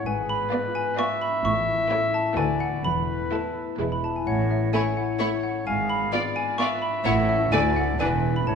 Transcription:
0.05 G#1 G#2 B4 G#5
0.21 G#3
0.29 B5
0.37 B3
0.52 B3 D4 F4 D5
0.67 F4
0.75 G#5
0.83 B4
0.98 B3 F4 D5 E5 C#6
1.14 B4
1.22 B5
1.29 D4
1.44 A1 A2 C#6
1.60 E3
1.75 A3
1.90 A3 C#4 E4 C#5
2.06 E4
2.14 A5
2.22 A4
2.37 D2 D3 A3 F#4 B4 D5 G#5
2.53 B3
2.60 F#5
2.68 B3 F#4
2.84 E1 E2 E3 B4 B5
3.00 A3
3.16 B3
3.31 A3 E4 B4 A5
3.47 A4
3.63 B4
3.79 E1 E2 E3 G#3 E4 B4
3.92 B3 B5
4.04 A5
4.10 B3 E4
4.16 G#5
4.26 A1 A2 C#5 F#5
4.41 E3
4.51 E5
4.57 A3
4.73 A3 C#4 E4 C#5 G#5
4.88 E4
4.97 F#5
5.04 A4
5.19 A3 E4 C#5 E5
5.35 A4
5.43 F#5
5.51 C#4
5.66 G#1 G#2 F5 G#5
5.82 G#3
5.90 B5
5.97 B3
6.12 B3 D4 F4 D5
6.28 F4
6.36 G#5
6.44 B4
6.58 B3 F4 D5 E5 C#6
6.75 B4
6.82 B5
6.90 D4
7.05 A1 A2 A3 E4 C#5 F#5
7.21 C#4
7.29 E5
7.36 E4 A4
7.52 D2 D3 A3 D4 D5 G#5
7.68 D4
7.76 F#5
7.84 D4 A4
7.99 E1 E2 E3 D4 B4 G#5
8.15 D4
8.31 D4 E4
8.36 B5
8.47 A1 A2 C#5 A5

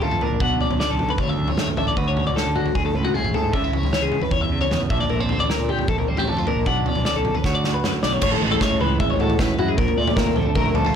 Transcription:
Already playing: F2 D3 A3 C4
0.02 F4 A4, mid tom
0.11 F2, mid tom
0.21 A#2 D4 A#4, floor tom
0.31 A#1
0.40 B1 B2 D4 F#5, kick, floor tom
0.61 C#4 D5, floor tom
0.71 B1, floor tom
0.79 D3 D5, snare
0.90 B1 A4
0.99 mid tom
1.09 B4, floor tom
1.18 D2 C#5, kick, floor tom
1.27 E5, floor tom
1.39 F#2
1.48 C#5, floor tom
1.57 D2 A3, snare, mid tom
1.68 mid tom
1.77 A1 D4 E5, floor tom, mid tom
1.87 D5, floor tom
1.97 D2 F#4 B4, kick, floor tom
2.08 C#5
2.16 C#4, floor tom
2.27 C#2 D5, floor tom
2.36 D3 A4, snare
2.46 D3
2.56 F#4, mid tom
2.66 floor tom
2.75 D2 G#4, kick, floor tom
2.85 A4, floor tom
2.95 C#2 A2 B4
3.05 F#4, floor tom
3.14 A3 G#4, mid tom
3.24 A1, mid tom
3.34 G#4 A4, floor tom
3.44 G#2
3.53 C#2 C#3 D4 E5, kick, floor tom
3.64 E4
3.73 C#4 C#5, floor tom
3.83 C#2, floor tom
3.93 E3 C#5, snare
4.02 C#2 G#4
4.12 mid tom
4.22 B4, floor tom
4.31 E2 C#5, kick, floor tom
4.41 E5, floor tom
4.52 C#3
4.61 C#5, floor tom
4.71 E2 B3, snare, mid tom
4.80 mid tom
4.90 A#1 A#2 D4 E5, kick, floor tom, mid tom
5.00 D5, floor tom
5.10 A#1 A3 A#4, floor tom
5.20 C4 C5
5.29 D3, floor tom
5.39 A1 D5, floor tom
5.50 A#4, snare
5.59 A#2
5.69 G4, mid tom
5.79 floor tom
5.88 A#1 F2 A4, kick, floor tom
5.98 A#4, floor tom
6.07 A1 G3 C5
6.17 A3 G4, floor tom
6.28 D4 A4, mid tom
6.36 F2 F4, mid tom
6.47 A#2 D4 A#4, floor tom
6.57 A#1
6.66 B1 B2 D4 F#5, kick, floor tom
6.86 C#4 D5, floor tom
6.95 B1, floor tom
7.05 D3 D5, snare
7.15 B1 A4
7.25 mid tom
7.35 B4, floor tom
7.44 D2 F#4 C#5, kick, snare
7.55 D5
7.64 F#4, snare
7.74 B4
7.83 F#2 D3, snare
8.03 B1 D5, snare
8.13 C#5
8.22 A1 A2 C#5, kick, floor tom, crash
8.32 A4, floor tom
8.42 A1 G#3 B4
8.51 A4, floor tom
8.61 A2 C#4 C#5, kick, snare, mid tom
8.71 floor tom
8.81 C#2 E3 B4, floor tom
9.00 G#1 G#3 E5, kick, floor tom
9.10 C#5, floor tom
9.20 A2 F#4 A4, floor tom
9.30 floor tom, mid tom
9.39 A2 C#4 B4, kick, snare, mid tom
9.58 F#2 E4 F#4, mid tom
9.68 G#4
9.78 A#1 A#2 A#4, kick, floor tom
9.88 floor tom
9.97 A#2 A3 D5
10.07 floor tom
10.16 A#2 C4 A#4, kick, snare, mid tom
10.26 floor tom
10.36 A#1 D3 A4, floor tom
10.55 A#1 A3 A#4, kick, floor tom
10.66 floor tom
10.75 D4 A4, floor tom
10.85 F4, floor tom, mid tom

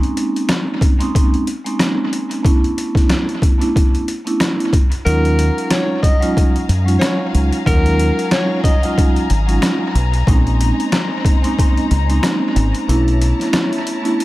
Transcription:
Already playing: G#3 A#3 C4 C#4 D#4
0.03 closed hi-hat
0.17 closed hi-hat
0.36 closed hi-hat
0.49 cross-stick, snare, closed hi-hat
0.81 kick, closed hi-hat
0.99 G#3 A#3 C4 C#4 D#4, closed hi-hat
1.15 kick, closed hi-hat
1.34 closed hi-hat
1.47 closed hi-hat
1.65 G#3 A#3 C4 C#4 D#4, closed hi-hat
1.79 cross-stick, snare, closed hi-hat
2.13 closed hi-hat
2.31 closed hi-hat
2.43 A3 B3 C#4 D4 E4, kick, closed hi-hat
2.64 closed hi-hat
2.78 closed hi-hat
2.95 kick, snare, closed hi-hat
3.09 cross-stick, snare, closed hi-hat
3.29 closed hi-hat
3.42 kick, closed hi-hat
3.58 A3 B3 C#4 D4 E4, closed hi-hat
3.76 kick, closed hi-hat
3.95 closed hi-hat
4.08 closed hi-hat
4.24 A3 B3 C#4 D4 E4, closed hi-hat
4.40 cross-stick, snare, closed hi-hat
4.60 closed hi-hat
4.73 kick, closed hi-hat
4.92 closed hi-hat
5.05 D#2 F#3 G#3 C#4 D#4 F4 A#4 F5 G#5 A#5, closed hi-hat
5.25 closed hi-hat
5.39 closed hi-hat
5.58 closed hi-hat
5.70 C#5, cross-stick, snare, closed hi-hat
6.02 D#5, kick, closed hi-hat
6.20 F#3 G#3 C#4 D#4 F4, closed hi-hat
6.37 kick, closed hi-hat
6.56 closed hi-hat
6.69 F#2, closed hi-hat
6.84 F#3 G#3 C#4 D#4 F4, closed hi-hat
6.99 C#5, cross-stick, snare, closed hi-hat
7.34 C#2, closed hi-hat
7.53 closed hi-hat
7.65 D#2 F#3 G#3 C#4 D#4 F4 A#4, kick, closed hi-hat
7.86 closed hi-hat
7.99 closed hi-hat
8.19 closed hi-hat
8.31 C#5, cross-stick, snare, closed hi-hat
8.64 D#5, kick, closed hi-hat
8.82 F#3 G#3 C#4 D#4 F4, closed hi-hat
8.98 kick, closed hi-hat
9.16 closed hi-hat
9.30 G#1, closed hi-hat
9.46 F#3 G#3 C#4 D#4 F4, closed hi-hat
9.62 cross-stick, snare, closed hi-hat
9.95 B1, closed hi-hat
10.14 closed hi-hat
10.26 A#1 G#3 A#3 C4 C#4 D#4 C5, kick, closed hi-hat
10.47 closed hi-hat
10.61 closed hi-hat
10.80 closed hi-hat
10.92 cross-stick, snare, closed hi-hat
11.25 kick, closed hi-hat
11.42 G#3 A#3 C4 C#4 D#4, closed hi-hat
11.59 kick, closed hi-hat
11.77 closed hi-hat
11.91 C#2, closed hi-hat
12.08 G#3 A#3 C4 C#4 D#4, closed hi-hat
12.23 cross-stick, snare, closed hi-hat
12.56 G#1, closed hi-hat
12.75 closed hi-hat
12.86 B1 A3 B3 C#4 D4 E4 C#5 A5, closed hi-hat
13.08 closed hi-hat
13.22 closed hi-hat
13.40 snare, closed hi-hat
13.53 cross-stick, snare, closed hi-hat
13.73 closed hi-hat
13.87 closed hi-hat
14.02 A3 B3 C#4 D4 E4, closed hi-hat
14.20 closed hi-hat

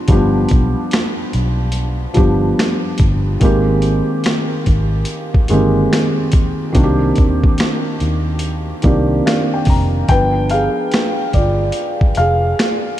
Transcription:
Already playing: F3 G3 B3 D4 F4
0.08 G1 F3 G3 B3 D4, kick, closed hi-hat
0.12 G4
0.49 B1, kick, closed hi-hat
0.91 finger snap, snare, closed hi-hat
1.33 B1, closed hi-hat
1.72 closed hi-hat
2.14 G1 F3 G3 B3 D4, kick, closed hi-hat
2.18 G4
2.59 finger snap, snare, closed hi-hat
2.98 G1, kick, closed hi-hat
3.40 G#1 D#3 G#3 A#3 C4, kick, closed hi-hat
3.44 G4
3.82 closed hi-hat
4.24 finger snap, snare, closed hi-hat
4.66 G#1, kick, closed hi-hat
5.05 closed hi-hat
5.34 kick
5.48 G1 D#3 G#3 A#3 C4, closed hi-hat
5.54 G4
5.93 finger snap, snare, closed hi-hat
6.32 kick, closed hi-hat
6.72 C2 D#3 A#3 C4 D4, kick, closed hi-hat
6.77 F#4
6.83 G4
7.16 D#2, kick, closed hi-hat
7.44 kick
7.58 finger snap, snare, closed hi-hat
8.00 D#2, closed hi-hat
8.39 closed hi-hat
8.82 C2 D#3 A#3 C4 D4 D5, kick, closed hi-hat
8.87 G4
9.26 F5, finger snap, snare, closed hi-hat
9.54 G5
9.65 F1, kick, open hi-hat
9.70 A#5
10.09 G1 F3 B3 D4 B4 G5, kick, closed hi-hat
10.50 G#4 F5, closed hi-hat
10.91 finger snap, snare, closed hi-hat
11.33 G1 F4 D5, kick, closed hi-hat
11.72 closed hi-hat
12.01 kick
12.15 F1 F5, closed hi-hat
12.20 G#4
12.59 finger snap, snare, closed hi-hat

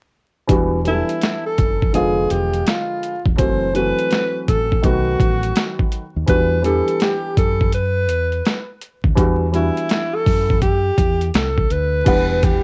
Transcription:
0.47 E1 E3 G3 B3 D4 F#4, kick, closed hi-hat
0.84 E3 F#3 B3 D4 E4 A4, closed hi-hat
0.91 G3
1.09 closed hi-hat
1.21 snare, closed hi-hat
1.46 A4
1.58 F#1, kick, closed hi-hat
1.82 kick
1.93 F1 D3 F3 G#3 B3 F4 G#4, closed hi-hat
2.30 E1 G4, closed hi-hat
2.54 closed hi-hat
2.67 F4, snare, closed hi-hat
3.03 closed hi-hat
3.25 E1, kick
3.37 F#1 E3 F#3 A3 C4 F#4 C5, kick, closed hi-hat
3.74 E3 F#3 A3 C4 F#4 B4, closed hi-hat
3.99 closed hi-hat
4.11 snare, closed hi-hat
4.48 A1 A4, kick, closed hi-hat
4.72 kick
4.82 B1 D#3 F#3 A3 B3 F#4, kick, closed hi-hat
5.20 A1, kick, closed hi-hat
5.43 closed hi-hat
5.56 snare, closed hi-hat
5.79 kick
5.92 closed hi-hat
6.16 D#2
6.26 E2 E3 G3 B3 D4 F#4 B4, kick, closed hi-hat
6.62 E3 G3 B3 D4 G4 A4, closed hi-hat
6.88 closed hi-hat
7.00 G4, snare, closed hi-hat
7.37 F#2 A4, kick, closed hi-hat
7.61 kick
7.73 B4, closed hi-hat
8.09 E2, closed hi-hat
8.32 closed hi-hat
8.45 snare, closed hi-hat
8.81 closed hi-hat
9.04 D2, kick
9.15 E2 E3 G3 B3 D4 F#4, kick, closed hi-hat
9.52 E3 G3 B3 D4 E4 F#4, closed hi-hat
9.77 closed hi-hat
9.89 snare, closed hi-hat
10.14 A4
10.26 F#2, kick, open hi-hat
10.50 kick
10.62 G4, kick, closed hi-hat
10.98 E2, kick, closed hi-hat
11.21 closed hi-hat
11.34 C2 A4, snare, closed hi-hat
11.58 kick
11.70 D2 B4, closed hi-hat
12.04 E1 E3 G3 B3 D4 F#5, kick, closed hi-hat, crash
12.43 G4, kick, closed hi-hat

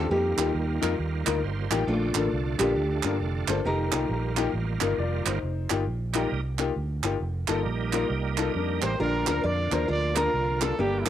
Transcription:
Already playing: A4
0.10 F2 D#3 G3 A#3 D#4 F4 G4
0.37 D#2 A#3 D#4 F4 G4, clap
0.55 D#2
0.81 F2 A#3 D#4 F4 A#4, clap
0.99 D#2
1.26 D2 A#3 D#4 F4 A#4, clap
1.43 G1 C5
1.71 A1 A#3 D#4 F4 G4, clap
1.87 A#1 A#2 D3 A3 D4 F4
2.15 A1 A#3 D4 F4 A4, clap
2.32 C2
2.59 A#1 A#3 D4 F4 G4 A4, clap
2.76 D2
3.03 G2 A#3 D4 F4 A#4, clap
3.20 F1
3.48 G1 A#3 D4 F4 A4 C5, clap
3.64 F1 D#3 G3 A#3 D#4 F4 G4 A#4
3.92 C2 A#3 D#4 F4 G4, clap
4.09 A#1
4.37 A#3 D#4 F4 G4, clap
4.53 A1
4.80 G1 A#3 D#4 F4 A#4, clap
4.98 F1 F4 D5
5.26 G1 D#4 C5, clap
5.43 F1
5.70 G1 A#3 D#4 F4 G4, clap
5.87 A#1
6.13 G3 A#3 D#4 F4 G4, clap
6.32 C2
6.59 A#3 D#4 F4 G4, clap
6.76 D2
7.03 G1 A#3 D#4 F4 G4, clap
7.20 F1
7.48 G1 G3 A#3 D#4 F4 A4, clap
7.65 A#1
7.93 A#3 D#4 F4 A#4, clap
8.10 C2
8.38 A#3 D#4 F4 A4, clap
8.55 F2 D4 A#4
8.82 A1 A#3 G4 C5, clap
8.99 A#1 A#2 D3 F3 A#3 D4 F4 A#4
9.27 D2 A#3 D4 F4 A#4, clap
9.44 F2 D5
9.72 D#2 A#3 D4 F4 A#4 C5, clap
9.88 D2 F4 A#4 D5
10.16 A#3 D4 F4 A#4, clap
10.34 C2
10.61 A#3 D4 F4 A4, clap
10.78 G1 G2 D3 G3 A3 A#3 D4 G4
10.83 A#3
11.01 E4
11.06 F4, clap

